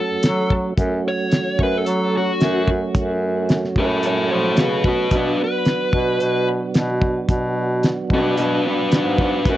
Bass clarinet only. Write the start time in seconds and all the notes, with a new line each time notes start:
0.11 F#2
0.24 F#3
0.77 F#2
1.59 F#2
1.86 F#3
2.41 F#2
2.95 F#2
3.76 F#2
4.03 F#2
4.31 F3
4.58 C#3
4.84 B2
5.11 B2
5.93 B2
6.21 B2
6.74 B2
7.29 B2
8.10 B2
8.37 B2
8.79 B2
8.92 G#2
9.45 F#2